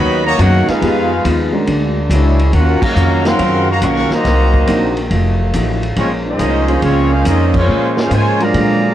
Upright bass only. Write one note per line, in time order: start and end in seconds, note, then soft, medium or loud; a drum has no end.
0.00 0.38 D#2 medium
0.39 0.66 F#2 loud
0.68 muted upright bass stroke soft
0.82 1.23 F2 medium
1.25 1.66 D#2 medium
1.68 2.09 D2 medium
2.10 2.52 C#2 loud
2.53 2.80 D#2 medium
2.82 muted upright bass stroke soft
2.96 3.38 F2 medium
3.39 3.81 F#2 loud
3.82 4.09 B1 loud
4.11 muted upright bass stroke soft
4.25 4.67 C2 medium
4.68 5.10 A#1 medium
5.11 5.52 F1 loud
5.54 5.96 A1 loud
5.97 6.38 A#1 loud
6.39 6.81 C2 medium
6.82 7.24 C#2 medium
7.25 7.67 F2 loud
7.68 8.10 A#2 medium
8.11 8.52 G#2 medium
8.54 8.94 A#2 medium